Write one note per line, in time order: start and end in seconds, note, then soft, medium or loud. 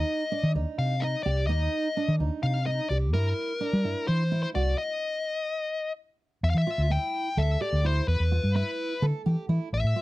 0.00 0.22 D#4 medium
0.00 0.51 D#5 medium
0.32 0.51 D4 medium
0.43 0.56 D#3 medium
0.55 0.64 D#2 medium
0.55 0.93 D#4 medium
0.78 1.15 C3 medium
0.78 1.03 F5 medium
1.01 1.21 D#4 medium
1.01 1.23 D#5 medium
1.23 1.49 C2 medium
1.23 1.45 G4 medium
1.23 1.46 D5 medium
1.47 1.67 D#2 medium
1.47 1.87 D#4 medium
1.47 2.15 D#5 medium
1.97 2.16 D4 medium
2.08 2.21 D#3 medium
2.20 2.29 D#2 medium
2.20 2.58 D#4 medium
2.43 2.79 C3 medium
2.43 2.65 F5 medium
2.66 2.86 D#4 medium
2.66 2.89 D#5 medium
2.89 3.14 C2 medium
2.89 3.10 G4 medium
2.89 2.96 D5 medium
3.14 3.32 G2 medium
3.14 3.52 E4 medium
3.14 4.07 A#4 medium
3.61 3.80 D4 medium
3.73 3.85 G3 medium
3.85 3.94 G2 medium
3.85 4.22 E4 medium
4.08 4.44 E3 medium
4.08 4.42 C5 medium
4.32 4.51 E4 medium
4.43 4.48 C5 medium
4.55 4.73 C2 medium
4.55 4.74 F#4 medium
4.55 4.78 D5 medium
4.78 5.92 D#5 medium
6.43 6.52 E2 medium
6.43 6.50 E5 medium
6.50 6.57 F5 medium
6.54 6.64 E3 medium
6.54 6.92 E5 medium
6.67 6.86 F4 medium
6.78 6.96 D2 medium
6.90 7.28 E4 medium
6.90 7.39 G5 medium
7.37 7.55 D2 medium
7.37 7.56 A4 medium
7.37 7.61 E5 medium
7.61 7.80 G4 medium
7.61 7.86 D5 medium
7.73 8.00 D2 medium
7.85 8.03 E4 medium
7.85 8.08 C5 medium
8.08 8.17 E2 medium
8.08 8.55 B4 medium
8.20 8.38 E2 medium
8.32 8.50 F4 medium
8.44 8.61 G2 medium
8.55 8.93 E4 medium
8.55 9.05 B4 medium
9.02 9.11 D3 medium
9.02 9.21 A4 medium
9.26 9.35 E3 medium
9.26 9.44 G4 medium
9.49 9.58 E3 medium
9.49 9.68 E4 medium
9.73 9.81 A1 medium
9.73 10.02 E5 medium
9.84 9.93 A2 medium
9.96 10.02 F4 medium